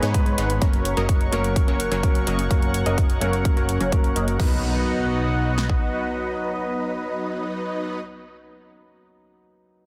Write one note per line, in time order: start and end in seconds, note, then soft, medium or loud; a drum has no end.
0.00 0.14 G#2 medium
0.00 0.36 G#2 medium
0.00 0.14 G#3 medium
0.00 0.35 G#3 medium
0.00 0.14 B3 medium
0.00 0.35 B3 medium
0.00 0.15 D#4 medium
0.00 0.35 D#4 medium
0.00 0.58 G#4 medium
0.00 0.15 B4 medium
0.00 0.58 B4 medium
0.00 0.35 B4 medium
0.00 4.36 C#5 medium
0.00 0.35 C#5 medium
0.00 0.58 B5 medium
0.00 closed hi-hat soft
0.14 0.58 G#2 medium
0.14 0.59 G#3 medium
0.14 0.59 B3 medium
0.14 0.59 D#4 medium
0.14 0.59 B4 medium
0.14 kick loud
0.14 closed hi-hat medium
0.26 closed hi-hat soft
0.38 0.59 G#1 medium
0.38 0.52 G#3 medium
0.38 0.52 B3 medium
0.38 0.52 D#4 medium
0.38 0.52 B4 medium
0.38 0.52 F#5 medium
0.38 closed hi-hat medium
0.50 closed hi-hat soft
0.60 1.29 F#3 medium
0.60 0.94 F#3 medium
0.60 1.29 A#3 medium
0.60 0.94 A#3 medium
0.60 0.94 C#4 medium
0.60 1.30 C#4 medium
0.60 0.94 A#4 medium
0.60 4.36 A#4 medium
0.60 1.30 A#4 medium
0.60 0.94 C#5 medium
0.60 4.36 F#5 medium
0.60 4.36 C#6 medium
0.60 kick loud
0.60 closed hi-hat medium
0.73 closed hi-hat soft
0.85 closed hi-hat medium
0.97 1.30 F#1 loud
0.97 1.30 F#3 medium
0.97 1.30 A#3 medium
0.97 1.30 C#4 medium
0.97 1.30 A#4 medium
0.97 1.30 D#5 medium
0.97 closed hi-hat soft
1.09 kick loud
1.09 closed hi-hat medium
1.21 closed hi-hat soft
1.31 1.66 F#1 medium
1.31 2.00 F#3 medium
1.31 1.46 F#3 medium
1.31 2.00 A#3 medium
1.31 1.46 A#3 medium
1.31 1.46 C#4 medium
1.31 2.01 C#4 medium
1.31 1.46 A#4 medium
1.31 2.01 A#4 loud
1.31 1.46 C#5 loud
1.31 closed hi-hat medium
1.44 closed hi-hat soft
1.56 kick loud
1.56 closed hi-hat medium
1.68 1.89 F#1 medium
1.68 1.89 F#3 medium
1.68 1.89 A#3 medium
1.68 1.89 C#4 medium
1.68 1.89 A#4 medium
1.68 1.89 C#5 medium
1.68 closed hi-hat soft
1.80 closed hi-hat medium
1.91 2.25 F#1 medium
1.91 2.24 F#3 medium
1.91 2.24 A#3 medium
1.91 2.24 C#4 medium
1.91 2.24 A#4 medium
1.91 2.24 C#5 medium
1.91 closed hi-hat soft
2.03 2.47 F#3 medium
2.03 2.48 A#3 medium
2.03 2.48 C#4 medium
2.03 2.48 A#4 medium
2.03 kick loud
2.03 closed hi-hat medium
2.15 closed hi-hat soft
2.27 2.48 F#1 medium
2.27 2.41 F#3 medium
2.27 2.41 A#3 medium
2.27 2.41 C#4 medium
2.27 2.41 A#4 medium
2.27 2.41 D#5 medium
2.27 closed hi-hat medium
2.39 closed hi-hat soft
2.50 3.18 F#3 medium
2.50 2.83 F#3 medium
2.50 3.18 A#3 medium
2.50 2.83 A#3 medium
2.50 2.83 C#4 medium
2.50 3.19 C#4 medium
2.50 2.83 A#4 medium
2.50 3.19 A#4 medium
2.50 2.83 C#5 medium
2.50 kick loud
2.50 closed hi-hat medium
2.62 closed hi-hat soft
2.74 closed hi-hat medium
2.86 3.19 F#1 medium
2.86 3.19 F#3 medium
2.86 3.19 A#3 medium
2.86 3.19 C#4 medium
2.86 3.19 A#4 medium
2.86 3.19 D#5 medium
2.86 closed hi-hat soft
2.98 kick loud
2.98 closed hi-hat medium
3.10 closed hi-hat soft
3.20 3.55 F#1 medium
3.20 3.89 F#3 medium
3.20 3.35 F#3 medium
3.20 3.89 A#3 medium
3.20 3.35 A#3 medium
3.20 3.35 C#4 medium
3.20 3.90 C#4 medium
3.20 3.35 A#4 medium
3.20 3.90 A#4 loud
3.20 3.35 C#5 loud
3.20 closed hi-hat medium
3.33 closed hi-hat soft
3.45 kick loud
3.45 closed hi-hat medium
3.57 3.78 F#1 medium
3.57 3.78 F#3 medium
3.57 3.78 A#3 medium
3.57 3.78 C#4 medium
3.57 3.78 A#4 medium
3.57 3.78 C#5 medium
3.57 closed hi-hat soft
3.69 closed hi-hat medium
3.81 4.14 F#1 medium
3.81 4.13 F#3 medium
3.81 4.13 A#3 medium
3.81 4.13 C#4 medium
3.81 4.13 A#4 medium
3.81 4.13 C#5 medium
3.81 closed hi-hat soft
3.92 4.36 F#3 medium
3.92 4.37 A#3 medium
3.92 4.37 C#4 medium
3.92 4.37 A#4 medium
3.92 kick loud
3.92 closed hi-hat medium
4.04 closed hi-hat soft
4.16 4.37 F#1 medium
4.16 4.30 F#3 medium
4.16 4.30 A#3 medium
4.16 4.30 C#4 medium
4.16 4.30 A#4 medium
4.16 4.30 D#5 medium
4.16 closed hi-hat medium
4.28 closed hi-hat soft
4.38 5.77 B1 loud
4.38 7.98 F#3 medium
4.38 8.00 F#3 medium
4.38 7.99 B3 medium
4.38 8.00 B3 medium
4.38 8.00 D#4 medium
4.38 8.01 D#4 medium
4.38 8.00 F#4 medium
4.38 8.00 B4 medium
4.38 8.02 B4 medium
4.38 8.00 D#5 medium
4.38 8.00 F#5 medium
4.38 kick loud
4.38 crash medium
4.38 impact medium
5.58 snare medium
5.70 kick medium